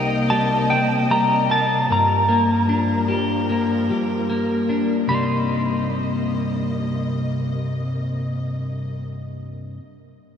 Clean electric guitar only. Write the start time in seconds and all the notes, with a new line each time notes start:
Already playing: C2 G3 A#3 D#4
0.31 G3
0.72 C3
1.10 G3
1.50 A#3
1.90 G2
2.29 A#3
2.69 D4
3.08 G4
3.50 A#3
3.91 G3
4.30 A#3
4.69 D4
5.07 C2 G2 C3 G3 A#3 D#4